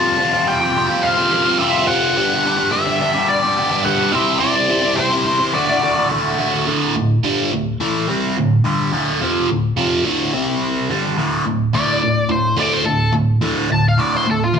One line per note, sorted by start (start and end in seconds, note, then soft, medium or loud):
0.00 0.45 F2 medium
0.00 0.46 C3 medium
0.00 0.17 F3 loud
0.00 0.18 G3 loud
0.00 0.19 C4 loud
0.00 0.20 F4 medium
0.00 0.47 A5 loud
0.18 0.34 F3 medium
0.18 0.33 G3 medium
0.18 0.32 C4 medium
0.18 0.31 F4 medium
0.32 0.47 F3 medium
0.32 0.48 G3 medium
0.32 0.48 C4 medium
0.32 0.48 F4 medium
0.47 0.89 F2 medium
0.47 0.89 C3 medium
0.47 0.61 F3 loud
0.47 0.61 G3 loud
0.47 0.60 C4 loud
0.47 0.59 F4 loud
0.47 1.06 G5 loud
0.60 0.73 F3 medium
0.60 0.75 G3 medium
0.60 0.75 C4 medium
0.60 0.76 F4 medium
0.74 0.89 F3 medium
0.74 0.89 G3 medium
0.74 0.87 C4 medium
0.74 0.86 F4 loud
0.88 1.18 F3 medium
0.88 1.18 G3 medium
0.88 1.16 C4 medium
0.88 1.15 F4 medium
1.03 1.58 F5 loud
1.16 1.30 F3 medium
1.16 1.31 G3 medium
1.16 1.32 C4 medium
1.16 1.32 F4 medium
1.31 1.46 F3 medium
1.31 1.47 G3 medium
1.31 1.45 C4 medium
1.31 1.43 F4 medium
1.45 1.59 F3 medium
1.45 1.60 G3 medium
1.45 1.60 C4 medium
1.45 1.61 F4 medium
1.58 2.14 F2 medium
1.58 2.15 C3 loud
1.58 1.86 F3 loud
1.58 1.88 G3 loud
1.58 1.88 C4 loud
1.58 1.89 F4 loud
1.58 1.88 E5 medium
1.87 2.14 F3 medium
1.87 2.17 G3 medium
1.87 2.15 C4 medium
1.87 2.16 F4 medium
1.87 2.75 F#5 medium
2.16 2.69 G2 medium
2.16 2.71 D3 loud
2.16 2.43 G3 medium
2.16 2.44 B3 loud
2.16 2.46 D4 loud
2.16 2.46 G4 loud
2.44 2.58 G3 medium
2.44 2.58 B3 medium
2.44 2.58 D4 medium
2.44 2.56 G4 medium
2.57 2.71 G3 medium
2.57 2.72 B3 medium
2.57 2.73 D4 medium
2.57 2.72 G4 medium
2.71 3.14 G2 loud
2.71 3.14 D3 medium
2.71 2.88 G3 medium
2.71 2.87 B3 loud
2.71 2.87 D4 loud
2.71 2.85 G4 loud
2.71 3.29 E5 loud
2.86 2.99 G3 medium
2.86 3.00 B3 medium
2.86 3.02 D4 medium
2.86 3.01 G4 medium
3.00 3.15 G3 medium
3.00 3.15 B3 medium
3.00 3.15 D4 medium
3.00 3.13 G4 loud
3.14 3.44 G3 medium
3.14 3.43 B3 medium
3.14 3.43 D4 medium
3.14 3.42 G4 medium
3.29 3.87 D5 loud
3.43 3.55 G3 medium
3.43 3.57 B3 medium
3.43 3.58 D4 medium
3.43 3.58 G4 medium
3.56 3.71 G3 medium
3.56 3.70 B3 medium
3.56 3.70 D4 medium
3.56 3.69 G4 medium
3.70 3.83 G3 medium
3.70 3.84 B3 medium
3.70 3.85 D4 medium
3.70 3.85 G4 medium
3.84 4.11 G2 loud
3.84 4.11 D3 medium
3.84 4.11 G3 loud
3.84 4.12 B3 loud
3.84 4.14 D4 loud
3.84 4.12 G4 loud
3.84 4.14 F#5 loud
4.12 4.38 C3 medium
4.12 4.39 G3 medium
4.12 4.40 C4 medium
4.12 4.40 E4 medium
4.12 4.41 G4 medium
4.12 4.41 C5 loud
4.12 4.39 E5 medium
4.39 4.95 C3 medium
4.39 4.96 G3 medium
4.39 4.67 C4 medium
4.39 4.68 E4 medium
4.39 4.69 G4 medium
4.39 4.70 C5 loud
4.39 4.99 D5 medium
4.68 4.84 C4 medium
4.68 4.83 E4 medium
4.68 4.83 G4 medium
4.68 4.81 C5 medium
4.82 4.96 C4 medium
4.82 4.97 E4 medium
4.82 4.98 G4 medium
4.82 4.98 C5 medium
4.96 5.39 C3 medium
4.96 5.40 G3 loud
4.96 5.12 C4 loud
4.96 5.11 E4 loud
4.96 5.10 G4 medium
4.96 5.55 C5 medium
4.96 5.08 C5 medium
5.09 5.23 C4 medium
5.09 5.24 E4 medium
5.09 5.25 G4 medium
5.09 5.26 C5 medium
5.24 5.40 C4 medium
5.24 5.40 E4 medium
5.24 5.39 G4 medium
5.24 5.38 C5 medium
5.39 5.53 C4 medium
5.39 5.53 E4 medium
5.39 5.52 G4 medium
5.39 5.52 C5 medium
5.53 5.96 D2 medium
5.53 5.80 A2 medium
5.53 5.69 D3 medium
5.53 5.67 A3 loud
5.53 5.66 F#4 loud
5.53 6.06 D5 medium
5.67 5.81 D3 medium
5.67 5.82 A3 medium
5.67 5.83 F#4 medium
5.81 6.09 A2 medium
5.81 5.98 D3 medium
5.81 5.97 A3 medium
5.81 5.94 F#4 medium
5.96 6.10 D3 medium
5.96 6.10 A3 medium
5.96 6.11 F#4 medium
6.10 6.65 D2 medium
6.10 6.36 A2 medium
6.10 6.37 D3 loud
6.10 6.38 A3 medium
6.10 6.39 F#4 medium
6.37 6.65 A2 medium
6.37 6.65 D3 medium
6.37 6.66 A3 medium
6.37 6.66 F#4 medium
6.66 6.94 D2 medium
6.66 6.94 A2 medium
6.66 6.95 D3 medium
6.96 7.18 D2 medium
6.96 7.18 A2 medium
7.24 7.51 G2 medium
7.24 7.51 D3 medium
7.24 7.51 G3 medium
7.53 7.75 D2 medium
7.53 7.75 A2 medium
7.80 8.07 A2 medium
7.80 8.07 E3 medium
7.80 8.07 A3 medium
8.08 8.35 C3 medium
8.08 8.36 G3 medium
8.08 8.36 C4 medium
8.37 8.59 D2 medium
8.37 8.59 A2 medium
8.64 8.91 G2 medium
8.64 8.92 D3 medium
8.64 8.92 G3 medium
8.93 9.20 D2 medium
8.93 9.20 A2 medium
8.93 9.20 D3 medium
9.21 9.48 F2 medium
9.21 9.48 C3 loud
9.21 9.49 F3 loud
9.49 9.71 D2 medium
9.49 9.71 A2 medium
9.77 10.04 F2 medium
9.77 10.04 C3 loud
9.77 10.05 F3 loud
10.05 10.32 D2 medium
10.05 10.32 A2 medium
10.05 10.33 D3 medium
10.33 10.89 C3 medium
10.33 10.89 G3 medium
10.33 10.89 C4 medium
10.90 11.17 G2 medium
10.90 11.17 D3 medium
10.90 11.17 G3 medium
11.18 11.44 D2 medium
11.18 11.44 A2 medium
11.18 11.44 D3 medium
11.46 11.71 D2 medium
11.46 11.72 A2 medium
11.73 12.00 D2 medium
11.73 12.00 A2 medium
11.73 12.01 D3 medium
11.73 12.29 D5 medium
12.02 12.27 D2 medium
12.02 12.28 A2 medium
12.29 12.55 D2 medium
12.29 12.55 A2 medium
12.29 12.58 C5 medium
12.56 12.84 D2 medium
12.56 12.84 A2 medium
12.56 12.84 D3 medium
12.56 12.73 D5 medium
12.73 12.85 C5 medium
12.85 13.11 D2 medium
12.85 13.11 A2 medium
12.85 13.13 A4 medium
13.13 13.39 D2 medium
13.13 13.39 A2 medium
13.41 13.68 D2 medium
13.41 13.69 A2 medium
13.41 13.69 D3 medium
13.70 13.96 D2 medium
13.70 13.96 A2 medium
13.70 13.85 A5 medium
13.88 14.00 F5 medium
13.98 14.25 D2 medium
13.98 14.25 A2 medium
13.98 14.25 D3 medium
13.98 14.13 D5 medium
14.16 14.28 C5 medium
14.26 14.52 D2 medium
14.26 14.52 A2 medium
14.31 14.43 A4 medium
14.44 14.58 F4 medium
14.53 14.60 D2 medium
14.53 14.60 A2 medium